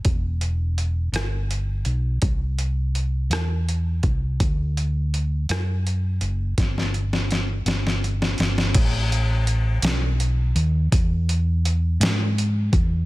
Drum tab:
CC |------------|------------|------------|------------|
HH |x-x-x-x-x-x-|x-x-x-x-x-x-|x-x-x-x-x-x-|x-x-x-x-x-x-|
SD |------r-----|------r-----|------r-----|oo-oo-oo-ooo|
BD |o-----------|o---------o-|o-----------|o-----------|

CC |x-----------|------------|
HH |x-x-x-x-x-x-|x-x-x-x-x-x-|
SD |------o-----|------o-----|
BD |o-----------|o---------o-|